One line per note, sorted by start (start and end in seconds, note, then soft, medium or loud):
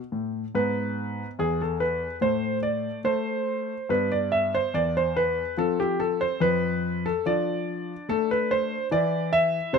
0.12 0.43 A2 soft
0.55 1.22 G#2 soft
0.55 2.17 B3 soft
0.55 1.26 B4 medium
1.39 2.05 E2 medium
1.39 1.60 G#4 medium
1.62 1.81 A4 medium
1.80 2.15 B4 medium
2.21 2.88 A2 soft
2.21 3.03 A3 soft
2.21 2.57 C5 medium
2.63 2.98 D5 medium
3.04 3.72 A3 medium
3.04 3.89 C5 medium
3.89 4.56 G2 medium
3.89 5.52 B3 soft
3.89 4.10 B4 medium
4.12 4.32 D5 medium
4.32 4.52 E5 medium
4.55 4.74 C5 medium
4.74 5.40 E2 medium
4.74 4.94 D5 medium
4.97 5.16 C5 medium
5.17 5.57 B4 medium
5.57 6.23 F3 medium
5.57 7.22 C4 soft
5.57 5.78 A4 medium
5.80 5.99 G4 medium
6.00 6.19 A4 medium
6.21 6.40 C5 medium
6.40 7.09 F2 medium
6.40 7.05 B4 medium
7.06 7.26 A4 medium
7.26 7.92 F3 medium
7.26 8.87 D4 soft
7.26 8.09 D5 medium
8.09 8.74 A3 medium
8.09 8.30 A4 medium
8.31 8.51 B4 medium
8.51 8.85 C5 medium
8.91 9.57 E3 medium
8.91 9.79 E4 soft
8.91 9.32 D5 medium
9.33 9.73 E5 medium
9.73 9.79 C3 medium
9.73 9.79 C5 medium